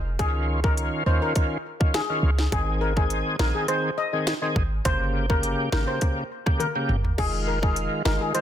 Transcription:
Already playing: 808-style bass F1
0.19 808-style bass C#2, tonewheel organ D#3 C#4 F4, steel pan G#4, kick, closed hi-hat
0.64 tonewheel organ D#3 C#4 F4, steel pan A#4, kick
0.77 closed hi-hat
1.06 808-style bass D#2, tonewheel organ D#3 C#4 F4, steel pan C5
1.22 steel pan A#4
1.35 tonewheel organ D#3 C#4 F4, kick, closed hi-hat
1.80 tonewheel organ D#3 C#4 F4, kick
1.94 steel pan G#4, snare, closed hi-hat
2.09 tonewheel organ D#3 C#4 F4
2.23 808-style bass C#2
2.39 snare
2.52 808-style bass G#1, tonewheel organ D#3 C4 G#4, steel pan G#4, kick, closed hi-hat
2.81 steel pan A#4
2.96 tonewheel organ D#3 C4 G#4, steel pan G#4, kick
3.10 closed hi-hat
3.39 808-style bass A#1, tonewheel organ D#3 C4 G#4, steel pan A#4, snare
3.55 steel pan G#4
3.68 tonewheel organ D#3 C4 G#4, steel pan C5, closed hi-hat
3.98 steel pan D#5
4.13 tonewheel organ D#3 C4 G#4
4.27 snare, closed hi-hat
4.42 tonewheel organ D#3 C4 G#4
4.56 808-style bass G#1, kick
4.85 808-style bass G1, tonewheel organ C#3 A#3 G4, steel pan C5, kick, closed hi-hat
5.29 tonewheel organ C#3 A#3 G4, steel pan A#4, kick
5.43 closed hi-hat
5.72 808-style bass G#1, tonewheel organ C#3 A#3 G4, steel pan A#4, snare
5.88 steel pan C5
6.01 tonewheel organ C#3 A#3 G4, kick, closed hi-hat
6.46 tonewheel organ C#3 A#3 G4, kick, cross-stick
6.60 steel pan A#4, closed hi-hat, high tom
6.75 tonewheel organ C#3 A#3 G4
6.89 808-style bass G1, mid tom
7.05 floor tom
7.18 808-style bass F1, tonewheel organ D#3 G#3 F4, steel pan G#4, kick, crash
7.47 steel pan A#4
7.62 tonewheel organ D#3 G#3 F4, steel pan G#4, kick
7.76 closed hi-hat
8.05 808-style bass G1, tonewheel organ D#3 G#3 F4, steel pan A#4, snare
8.21 steel pan G#4
8.34 tonewheel organ D#3 G#3 F4, steel pan C5, closed hi-hat

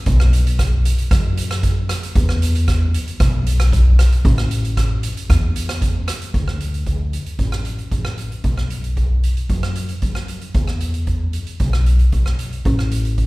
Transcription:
0.06 upright bass B1, kick, closed hi-hat
0.20 cross-stick
0.33 closed hi-hat
0.47 closed hi-hat
0.59 kick, cross-stick, closed hi-hat
0.85 closed hi-hat
0.98 closed hi-hat
1.11 upright bass F#2, kick, cross-stick, closed hi-hat
1.37 closed hi-hat
1.51 cross-stick, closed hi-hat
1.63 kick, closed hi-hat
1.89 cross-stick, closed hi-hat
2.03 closed hi-hat
2.15 upright bass E2, kick, closed hi-hat
2.29 cross-stick
2.42 closed hi-hat
2.55 closed hi-hat
2.68 kick, cross-stick, closed hi-hat
2.94 closed hi-hat
3.08 closed hi-hat
3.20 upright bass B1, kick, cross-stick, closed hi-hat
3.47 closed hi-hat
3.60 cross-stick, closed hi-hat
3.72 kick, closed hi-hat
3.99 cross-stick, closed hi-hat
4.12 closed hi-hat
4.25 upright bass A1, kick, closed hi-hat
4.38 cross-stick
4.51 closed hi-hat
4.65 closed hi-hat
4.77 kick, cross-stick, closed hi-hat
5.03 closed hi-hat
5.17 closed hi-hat
5.30 upright bass E2, kick, cross-stick, closed hi-hat
5.56 closed hi-hat
5.69 cross-stick, closed hi-hat
5.82 kick, closed hi-hat
6.08 cross-stick, closed hi-hat
6.22 closed hi-hat
6.34 upright bass D2, kick, closed hi-hat
6.48 cross-stick
6.60 closed hi-hat
6.74 closed hi-hat
6.86 kick, closed hi-hat
7.13 closed hi-hat
7.26 closed hi-hat
7.39 upright bass A1, kick, closed hi-hat
7.52 cross-stick
7.65 closed hi-hat
7.79 closed hi-hat
7.91 upright bass A1, kick, closed hi-hat
8.05 cross-stick
8.18 closed hi-hat
8.32 closed hi-hat
8.44 upright bass B1, kick, closed hi-hat
8.57 cross-stick
8.70 closed hi-hat
8.84 closed hi-hat
8.97 kick, closed hi-hat
9.23 closed hi-hat
9.37 closed hi-hat
9.49 upright bass F#2, kick, closed hi-hat
9.63 cross-stick
9.76 closed hi-hat
9.89 closed hi-hat
10.02 upright bass F#2, kick, closed hi-hat
10.15 cross-stick
10.28 closed hi-hat
10.41 closed hi-hat
10.54 upright bass E2, kick, closed hi-hat
10.68 cross-stick
10.80 closed hi-hat
10.94 closed hi-hat
11.07 kick, closed hi-hat
11.33 closed hi-hat
11.47 closed hi-hat
11.60 upright bass B1, kick, closed hi-hat
11.73 cross-stick
11.86 closed hi-hat
11.99 closed hi-hat
12.12 upright bass B1, kick, closed hi-hat
12.26 cross-stick
12.39 closed hi-hat
12.53 closed hi-hat
12.65 upright bass A1, kick, closed hi-hat
12.79 cross-stick
12.91 closed hi-hat
13.05 closed hi-hat
13.18 kick, closed hi-hat

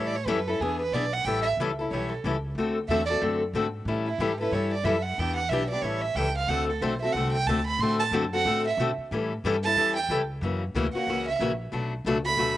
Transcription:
Already playing: upright bass A2, steel-string acoustic guitar E3 G3 C#4 E4 A4
0.07 violin D5
0.16 violin C#5
0.26 upright bass F#2, steel-string acoustic guitar E3 G3 C#4 E4 A4, violin B4
0.48 steel-string acoustic guitar C#4 E4 A4, violin A4
0.60 upright bass E2, steel-string acoustic guitar E3 B3 D4 G#4, violin G#4
0.80 violin B4
0.92 upright bass B1, steel-string acoustic guitar E3 B3 D4 G#4, violin D5
1.13 violin F#5
1.25 upright bass A1, steel-string acoustic guitar E3 G3 C#4 E4 A4, violin G5
1.42 violin E5
1.57 upright bass C#2, steel-string acoustic guitar E3 G3
1.61 steel-string acoustic guitar C#4 E4 A4
1.79 steel-string acoustic guitar C#4 E4 A4
1.91 upright bass B1, steel-string acoustic guitar E3 G3 C#4 E4 A4, violin C#5
2.11 violin A4
2.24 upright bass C#2, steel-string acoustic guitar E3 G3 C#4 E4 A4
2.55 upright bass D2, steel-string acoustic guitar D3 A3 C4 F#4
2.60 steel-string acoustic guitar A4
2.88 upright bass E2, steel-string acoustic guitar D3 A3 C4 F#4 A4, violin E5
3.06 violin D5
3.10 steel-string acoustic guitar C4 F#4 A4
3.21 upright bass F#2, steel-string acoustic guitar D3 A3 C4 F#4 A4
3.53 upright bass G#2, steel-string acoustic guitar D3 A3 C4 F#4 A4
3.85 upright bass A2, steel-string acoustic guitar E3 G3 C#4 E4 A4
4.06 violin E4
4.18 upright bass G#2, steel-string acoustic guitar E3 G3 C#4 E4 A4, violin G4
4.40 steel-string acoustic guitar C#4 E4 A4, violin B4
4.51 upright bass G2, steel-string acoustic guitar E3 G3 C#4 E4 A4, violin C#5
4.73 violin D5
4.84 upright bass F#2, steel-string acoustic guitar E3 G3 C#4 E4 A4, violin E5
5.03 violin F#5
5.18 upright bass E2, steel-string acoustic guitar E3 B3 D4 G4, violin G5
5.36 violin F#5
5.49 upright bass B1, steel-string acoustic guitar E3 B3 D4 G4, violin E5
5.70 steel-string acoustic guitar B3 D4 G4, violin D5
5.82 upright bass A1, steel-string acoustic guitar E3 G3 C#4 E4 A4, violin C#5
6.02 violin E5
6.15 upright bass C#2, steel-string acoustic guitar E3 G3 C#4 E4 A4, violin G5
6.37 violin F5
6.48 upright bass D2, steel-string acoustic guitar D3 A3 C4 F#4 A4, violin F#5
6.70 violin A4
6.81 upright bass B1, steel-string acoustic guitar D3 A3 C4 F#4 A4, violin C5
7.01 steel-string acoustic guitar C4 F#4 A4, violin E5
7.12 upright bass C2, steel-string acoustic guitar D3, violin F#5
7.17 steel-string acoustic guitar A3 C4 F#4 A4
7.33 violin G5
7.46 upright bass D2, steel-string acoustic guitar D3 A3 C4 F#4 A4, violin A5
7.67 violin B5
7.78 upright bass A2, steel-string acoustic guitar D3 A3 C4, violin C6
7.83 steel-string acoustic guitar F#4 A4
7.99 violin A5
8.11 upright bass F#2, steel-string acoustic guitar D3 A3 C4 F#4 A4
8.33 steel-string acoustic guitar C4 F#4 A4, violin F#5
8.45 upright bass A2, steel-string acoustic guitar D3 A3 C4 F#4 A4
8.67 violin E5
8.77 upright bass B2, steel-string acoustic guitar D3 A3 C4 F#4 A4
8.98 muted upright bass stroke
9.11 upright bass A2, steel-string acoustic guitar E3 G3 C#4 E4 A4
9.44 upright bass G2, steel-string acoustic guitar E3 G3 C#4 E4 A4
9.64 steel-string acoustic guitar C#4 E4 A4, violin A5
9.76 upright bass E2, steel-string acoustic guitar E3 G3 C#4 E4 A4
9.96 violin G5
10.09 upright bass C#2, steel-string acoustic guitar E3 G3 C#4 E4 A4
10.41 upright bass F#2, steel-string acoustic guitar C#3 E3 A#3 C#4 F#4
10.75 upright bass D2, steel-string acoustic guitar C#3 E3 A#3 C#4 F#4
10.94 steel-string acoustic guitar A#3 C#4 F#4, violin F#5, muted upright bass stroke
11.07 upright bass C#2, steel-string acoustic guitar C#3 E3 A#3 C#4 F#4
11.28 violin E5
11.39 upright bass A#1, steel-string acoustic guitar C#3 E3 A#3 C#4 F#4
11.72 upright bass B1, steel-string acoustic guitar B2 F#3 A3 D4 F#4
12.05 upright bass C#2, steel-string acoustic guitar B2 F#3 A3 D4 F#4
12.25 steel-string acoustic guitar A3 D4 F#4, violin B5
12.36 upright bass D2, steel-string acoustic guitar B2 F#3 A3 D4 F#4

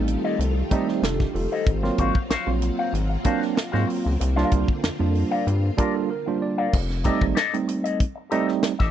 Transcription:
Already playing: analog synth bass A1, string machine D#3 G3 A3 F4, tine electric piano G3 A3 C4 D#4
0.08 closed hi-hat
0.24 clean electric guitar G4 A4 D#5
0.39 analog synth bass C2, closed hi-hat
0.71 tine electric piano G3 A3 C4 D#4 D#5, clean electric guitar G4 A4 D#5, kick, closed hi-hat
0.88 tine electric piano C5, muted clean electric guitar stroke, snare
1.02 analog synth bass F1, tine electric piano D4 F4 A4, muted clean electric guitar stroke, snare, closed hi-hat
1.20 tine electric piano G4, muted clean electric guitar stroke, kick, snare
1.34 analog synth bass F1, tine electric piano F4 A4, open hi-hat
1.52 clean electric guitar G4 A4 D#5, tine electric piano A4 C5
1.66 analog synth bass G#1, string machine F#3 A#3 C4 F4, kick, closed hi-hat
1.83 tine electric piano F#3 A#3 C4 F4, snare
1.98 analog synth bass G#1, clean electric guitar F#4 C5 F5, kick, closed hi-hat
2.15 kick
2.30 analog synth bass A#1, tine electric piano C4 F4, clean electric guitar F#4 C5 F5, snare, closed hi-hat
2.47 analog synth bass A#1, tine electric piano F#3 A#3 C4 F4
2.62 muted clean electric guitar stroke, closed hi-hat
2.79 clean electric guitar F#4 C5 F5
2.93 analog synth bass G#1, closed hi-hat
3.10 muted clean electric guitar stroke
3.24 tine electric piano F#3 A#3 C4 D4, clean electric guitar F#4 C5 F5, kick, closed hi-hat
3.41 muted clean electric guitar stroke, snare
3.55 muted clean electric guitar stroke, snare, closed hi-hat
3.72 analog synth bass G#2, tine electric piano F#3 A#3 C4 F4, clean electric guitar F#4 C5 F5, snare
3.87 muted clean electric guitar stroke, open hi-hat
4.05 analog synth bass C#2, muted clean electric guitar stroke
4.20 analog synth bass C2, string machine D3 F4, muted clean electric guitar stroke, closed hi-hat
4.36 tine electric piano G3 A#3 D4 F4, clean electric guitar A#4 D5 F5, snare
4.51 analog synth bass C2, muted clean electric guitar stroke, kick, closed hi-hat
4.68 muted clean electric guitar stroke, kick
4.83 analog synth bass F2, tine electric piano D4 F4, muted clean electric guitar stroke, snare, closed hi-hat
4.99 analog synth bass F2, tine electric piano G3 A#3 D4 F4, muted clean electric guitar stroke
5.15 open hi-hat
5.31 clean electric guitar A#4 D5 F5
5.47 analog synth bass G2, closed hi-hat
5.77 tine electric piano G3 A#3 D4 F4 G4, clean electric guitar A#4 D5 F5, kick, closed hi-hat
5.95 tine electric piano A4
6.10 tine electric piano A#4, muted clean electric guitar stroke
6.26 tine electric piano G3 A#3 D4 F4 C5, muted clean electric guitar stroke
6.42 tine electric piano D5
6.58 clean electric guitar A#4 D5 F5
6.73 analog synth bass F1, kick, crash
6.90 snare
7.04 tine electric piano G3 A3 C4 D#4, clean electric guitar G4 A4 D#5, kick, closed hi-hat
7.21 analog synth bass G#1, kick
7.35 clean electric guitar G4 A4 D#5, snare, closed hi-hat
7.53 tine electric piano G3 A3 C4 D#4, closed hi-hat
7.68 muted clean electric guitar stroke, closed hi-hat
7.84 clean electric guitar G4 A4 D#5, closed hi-hat
8.00 kick, closed hi-hat
8.16 muted clean electric guitar stroke
8.30 tine electric piano G3 A3 C4 D#4, clean electric guitar G4 A4 D#5, closed hi-hat
8.48 muted clean electric guitar stroke, snare
8.63 muted clean electric guitar stroke, snare, closed hi-hat
8.79 analog synth bass A1, clean electric guitar G4 A4 D#5, kick, snare

